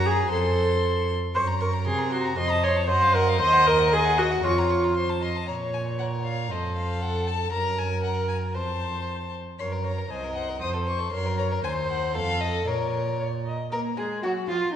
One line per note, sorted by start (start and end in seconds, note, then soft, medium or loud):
0.00 0.27 F#2 medium
0.00 0.30 A#4 medium
0.00 0.30 A#5 medium
0.06 0.31 G#4 medium
0.31 1.13 F2 medium
0.31 1.08 A4 medium
0.31 1.08 C5 medium
0.31 1.13 C6 medium
1.35 1.88 F#2 medium
1.35 2.34 A#4 medium
1.35 1.43 C5 medium
1.35 1.49 C#6 soft
1.48 1.62 A#5 soft
1.61 1.69 A#4 medium
1.61 1.75 C#6 soft
1.74 1.86 A#5 soft
1.86 2.37 C3 medium
1.86 2.12 G#4 medium
1.86 2.00 C6 medium
1.99 2.14 A#5 soft
2.12 2.37 F#4 medium
2.12 2.26 C6 medium
2.25 2.38 A#5 soft
2.37 2.90 F2 medium
2.37 2.90 C5 medium
2.37 2.65 D#5 medium
2.37 2.53 C6 medium
2.51 2.66 A5 soft
2.63 2.89 C#5 medium
2.63 2.78 C6 medium
2.76 2.89 A5 soft
2.88 3.41 F#2 medium
2.88 3.16 C5 medium
2.88 4.45 D#5 loud
2.88 3.04 F#5 medium
3.03 3.17 F5 medium
3.15 3.40 A#4 medium
3.15 3.30 F#5 medium
3.28 3.40 F5 medium
3.40 4.43 D#2 medium
3.40 3.68 C5 loud
3.40 3.55 D#5 medium
3.54 3.68 F#5 medium
3.66 3.94 A#4 medium
3.66 3.80 D#5 medium
3.79 3.92 F#5 medium
3.92 4.20 G#4 loud
3.92 4.07 D#5 medium
4.05 4.20 F#5 medium
4.18 4.46 F#4 medium
4.18 4.33 D#5 medium
4.31 4.43 F#5 medium
4.43 5.26 F2 medium
4.43 5.23 F4 medium
4.43 4.91 C#5 medium
4.43 4.60 C#6 medium
4.58 4.72 A#5 soft
4.71 4.86 C#6 medium
4.84 4.96 A#5 soft
4.96 5.20 C5 medium
4.96 5.11 C6 soft
5.10 5.24 A5 soft
5.22 5.47 D#5 medium
5.22 5.38 C6 soft
5.36 5.49 A5 soft
5.48 6.53 A#2 soft
5.48 6.47 C#5 soft
5.48 6.02 C#5 soft
5.48 5.56 A#5 soft
5.74 5.82 G#5 medium
5.99 6.53 A#4 soft
5.99 6.07 F#5 medium
6.25 6.52 F5 medium
6.51 7.52 F2 soft
6.51 7.52 A4 soft
6.51 7.01 C5 soft
6.51 6.76 D#5 medium
6.77 7.03 F5 medium
7.02 7.52 A4 medium
7.02 7.28 F#5 medium
7.27 7.52 A5 medium
7.53 8.57 F#2 medium
7.53 8.03 A#4 medium
7.53 8.56 A#4 medium
7.53 7.80 A#5 medium
7.79 8.03 G#5 medium
8.03 8.56 A#4 soft
8.03 8.28 F#5 medium
8.28 8.36 G#5 medium
8.55 9.39 F2 soft
8.55 9.39 C5 soft
8.55 9.33 C5 soft
8.55 9.32 A5 medium
9.59 10.07 F#2 soft
9.59 10.08 A#4 soft
9.59 9.74 C#5 soft
9.59 9.67 C6 medium
9.72 9.86 A#4 soft
9.85 9.99 C#5 soft
9.85 10.12 A#5 soft
9.98 10.10 A#4 soft
10.10 10.61 C2 soft
10.10 10.25 C5 soft
10.10 10.61 D#5 medium
10.10 10.35 G#5 medium
10.24 10.38 A#4 soft
10.35 10.50 C5 soft
10.35 10.60 F#5 medium
10.49 10.61 A#4 soft
10.61 11.12 F2 soft
10.61 10.76 C5 soft
10.61 11.12 C5 medium
10.61 10.69 D#6 medium
10.74 10.88 A4 soft
10.87 11.01 C5 soft
10.87 11.12 C#6 medium
10.99 11.13 A4 soft
11.12 11.63 F#2 medium
11.12 11.66 A#4 medium
11.12 11.28 C#5 soft
11.12 11.37 C6 medium
11.26 11.40 A#4 soft
11.38 11.53 C#5 soft
11.38 11.46 A#5 medium
11.52 11.64 A#4 soft
11.64 12.16 D#2 medium
11.64 12.16 C5 medium
11.64 12.15 C5 medium
11.64 11.72 G#5 medium
11.89 12.14 F#5 medium
12.15 12.66 F2 medium
12.15 12.69 A4 medium
12.15 12.42 F5 medium
12.41 12.68 D#5 medium
12.67 13.50 A#2 soft
12.67 13.52 A#4 soft
12.67 13.15 A#4 soft
12.67 13.20 C#5 medium
13.20 13.28 C#5 soft
13.46 13.72 D#5 soft
13.72 13.96 A#3 soft
13.72 13.99 A#4 soft
13.72 13.80 A#4 medium
13.97 14.25 G#3 soft
13.97 14.05 G#4 soft
13.97 14.23 G#4 soft
13.97 14.23 G#4 medium
14.23 14.48 F#3 medium
14.23 14.31 F#4 medium
14.23 14.48 F#4 medium
14.48 14.57 F3 soft
14.48 14.73 F4 medium
14.48 14.57 F4 medium